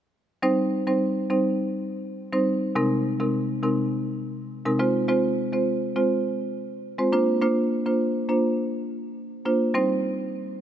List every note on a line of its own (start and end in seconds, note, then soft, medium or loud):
0.42 0.83 G3 medium
0.42 0.83 C4 medium
0.42 0.83 D#4 medium
0.42 0.83 C5 loud
0.87 1.27 G3 medium
0.87 1.27 C4 medium
0.87 1.27 D#4 medium
0.87 1.27 C5 medium
1.30 1.57 G3 medium
1.30 1.57 C4 medium
1.30 1.57 D#4 medium
1.30 1.57 C5 medium
2.32 2.54 G3 medium
2.32 2.54 C4 medium
2.32 2.54 D#4 medium
2.32 2.54 C5 medium
2.75 3.16 C3 medium
2.75 3.16 G#3 medium
2.75 3.16 C4 medium
2.75 3.16 D#4 medium
2.75 3.17 A#4 loud
3.20 3.60 C3 medium
3.20 3.60 G#3 medium
3.20 3.60 C4 medium
3.20 3.60 D#4 medium
3.20 3.60 A#4 medium
3.63 3.90 C3 medium
3.63 3.90 G#3 medium
3.63 3.90 C4 medium
3.63 3.90 D#4 medium
3.63 3.90 A#4 medium
4.65 4.87 C3 medium
4.65 4.78 G#3 medium
4.65 4.78 C4 medium
4.65 4.87 D#4 medium
4.65 4.87 A#4 medium
4.79 5.06 G#3 medium
4.79 5.06 C4 medium
4.79 5.06 F4 medium
4.79 5.07 C5 loud
5.08 5.49 G#3 medium
5.08 5.49 C4 medium
5.08 5.49 F4 medium
5.08 5.49 C5 loud
5.53 5.93 G#3 medium
5.53 5.93 C4 medium
5.53 5.93 F4 medium
5.53 5.93 C5 medium
5.96 6.23 G#3 medium
5.96 6.23 C4 medium
5.96 6.23 F4 medium
5.96 6.23 C5 medium
6.98 7.20 G#3 medium
6.98 7.20 C4 medium
6.98 7.12 F4 medium
6.98 7.12 C5 medium
7.12 7.39 A#3 medium
7.12 7.39 D4 medium
7.12 7.40 F4 medium
7.12 7.40 C5 loud
7.41 7.82 A#3 medium
7.41 7.82 D4 medium
7.41 7.82 F4 medium
7.41 7.82 C5 loud
7.86 8.26 A#3 medium
7.86 8.26 D4 medium
7.86 8.26 F4 medium
7.86 8.26 C5 medium
8.29 8.56 A#3 medium
8.29 8.56 D4 medium
8.29 8.56 F4 medium
8.29 8.56 C5 medium
9.45 9.68 A#3 medium
9.45 9.68 D4 medium
9.45 9.68 F4 medium
9.45 9.68 C5 medium
9.74 9.96 G3 medium
9.74 9.96 C4 medium
9.74 9.97 D#4 medium
9.74 9.97 C5 loud